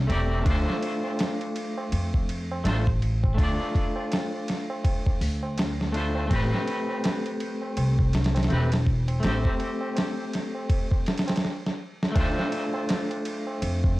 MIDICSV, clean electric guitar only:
0, 0, Header, 1, 2, 480
1, 0, Start_track
1, 0, Tempo, 731707
1, 296, Time_signature, 4, 2, 24, 8
1, 9183, End_track
2, 0, Start_track
2, 0, Title_t, "Clean electric guitar"
2, 0, Program_c, 0, 27
2, 48, Note_on_c, 0, 57, 74
2, 59, Note_on_c, 0, 60, 65
2, 68, Note_on_c, 0, 67, 67
2, 77, Note_on_c, 0, 74, 80
2, 265, Note_off_c, 0, 57, 0
2, 273, Note_on_c, 0, 57, 91
2, 274, Note_off_c, 0, 60, 0
2, 279, Note_off_c, 0, 67, 0
2, 283, Note_off_c, 0, 74, 0
2, 294, Note_on_c, 0, 62, 79
2, 312, Note_on_c, 0, 65, 79
2, 333, Note_on_c, 0, 72, 99
2, 1701, Note_off_c, 0, 57, 0
2, 1712, Note_off_c, 0, 62, 0
2, 1721, Note_off_c, 0, 65, 0
2, 1731, Note_off_c, 0, 72, 0
2, 1731, Note_on_c, 0, 57, 75
2, 1740, Note_on_c, 0, 62, 67
2, 1751, Note_on_c, 0, 65, 68
2, 1761, Note_on_c, 0, 72, 78
2, 1859, Note_off_c, 0, 57, 0
2, 1863, Note_off_c, 0, 62, 0
2, 1869, Note_off_c, 0, 65, 0
2, 1874, Note_off_c, 0, 72, 0
2, 2194, Note_on_c, 0, 57, 72
2, 2212, Note_on_c, 0, 62, 66
2, 2232, Note_on_c, 0, 65, 69
2, 2253, Note_on_c, 0, 74, 76
2, 3862, Note_off_c, 0, 57, 0
2, 3871, Note_off_c, 0, 62, 0
2, 3881, Note_off_c, 0, 65, 0
2, 3886, Note_on_c, 0, 57, 71
2, 3891, Note_off_c, 0, 74, 0
2, 3895, Note_on_c, 0, 62, 63
2, 3906, Note_on_c, 0, 65, 60
2, 3916, Note_on_c, 0, 72, 78
2, 4106, Note_off_c, 0, 57, 0
2, 4112, Note_off_c, 0, 62, 0
2, 4114, Note_on_c, 0, 57, 84
2, 4118, Note_off_c, 0, 65, 0
2, 4123, Note_off_c, 0, 72, 0
2, 4132, Note_on_c, 0, 60, 78
2, 4153, Note_on_c, 0, 67, 83
2, 4170, Note_on_c, 0, 71, 100
2, 5542, Note_off_c, 0, 57, 0
2, 5551, Note_off_c, 0, 60, 0
2, 5561, Note_off_c, 0, 67, 0
2, 5567, Note_on_c, 0, 57, 73
2, 5570, Note_off_c, 0, 71, 0
2, 5577, Note_on_c, 0, 60, 72
2, 5588, Note_on_c, 0, 67, 70
2, 5596, Note_on_c, 0, 71, 80
2, 5697, Note_off_c, 0, 57, 0
2, 5702, Note_off_c, 0, 60, 0
2, 5707, Note_off_c, 0, 67, 0
2, 5712, Note_off_c, 0, 71, 0
2, 6035, Note_on_c, 0, 57, 71
2, 6053, Note_on_c, 0, 60, 70
2, 6073, Note_on_c, 0, 67, 64
2, 6093, Note_on_c, 0, 72, 80
2, 7486, Note_off_c, 0, 57, 0
2, 7494, Note_off_c, 0, 60, 0
2, 7504, Note_off_c, 0, 67, 0
2, 7514, Note_off_c, 0, 72, 0
2, 7948, Note_on_c, 0, 57, 86
2, 7968, Note_on_c, 0, 62, 86
2, 7986, Note_on_c, 0, 65, 84
2, 8004, Note_on_c, 0, 72, 95
2, 9183, Note_off_c, 0, 57, 0
2, 9183, Note_off_c, 0, 62, 0
2, 9183, Note_off_c, 0, 65, 0
2, 9183, Note_off_c, 0, 72, 0
2, 9183, End_track
0, 0, End_of_file